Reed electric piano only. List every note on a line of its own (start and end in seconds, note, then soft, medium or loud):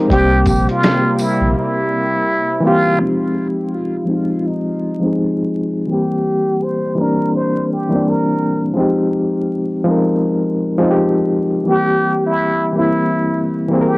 0.00 0.12 F3 medium
0.00 0.12 G#3 medium
0.00 0.12 C4 medium
0.00 0.12 D#4 medium
0.00 0.12 A#4 medium
0.08 1.12 C3 medium
0.08 1.12 G3 medium
0.08 1.13 A#3 medium
0.13 1.14 C4 medium
0.13 1.15 G4 medium
2.61 2.89 E3 medium
2.61 2.90 G3 medium
2.61 2.91 A#3 medium
2.65 2.92 C4 medium
2.65 2.93 G4 medium
2.97 3.75 F3 medium
2.97 3.75 G#3 medium
2.97 3.76 C4 medium
3.02 3.77 D#4 medium
3.02 3.78 G4 medium
4.05 4.71 F3 medium
4.05 4.72 G#3 medium
4.05 4.73 C4 medium
4.10 4.74 D#4 medium
4.10 4.75 F4 medium
5.00 5.62 F3 medium
5.00 5.63 G#3 medium
5.00 5.64 C4 medium
5.05 5.64 D#4 medium
5.05 5.65 G#4 medium
5.87 6.64 E3 medium
5.87 6.65 G3 medium
5.87 6.66 A#3 medium
5.92 6.66 C4 medium
5.92 6.67 G4 medium
6.95 7.61 E3 medium
6.95 7.62 G3 medium
6.95 7.62 A#3 medium
7.00 7.63 C4 medium
7.00 7.64 D4 medium
7.89 8.51 E3 medium
7.89 8.52 G3 medium
7.89 8.53 A#3 medium
7.94 8.54 C4 medium
7.94 8.54 D4 medium
8.74 9.52 F3 medium
8.74 9.53 G#3 medium
8.74 9.54 C4 medium
8.78 9.54 D#4 medium
8.78 9.55 G4 medium
9.84 10.50 F3 medium
9.84 10.51 G#3 medium
9.84 10.52 C4 medium
9.89 10.53 D#4 medium
9.89 10.53 A#4 medium
10.78 11.40 F3 medium
10.78 11.41 G#3 medium
10.78 11.42 C4 medium
10.83 11.43 D#4 medium
10.83 10.87 F4 medium
10.91 11.47 G4 medium
11.64 12.42 E3 medium
11.64 12.43 G3 medium
11.64 12.44 A#3 medium
11.69 12.44 C4 soft
11.69 12.45 G4 medium
12.72 13.39 E3 medium
12.72 13.40 G3 medium
12.72 13.41 A#3 medium
12.77 13.41 C4 medium
12.77 13.42 E4 medium
13.68 13.98 E3 medium
13.68 13.98 G3 medium
13.68 13.98 A#3 medium
13.73 13.98 C4 medium
13.73 13.77 G#4 medium
13.81 13.98 A#4 medium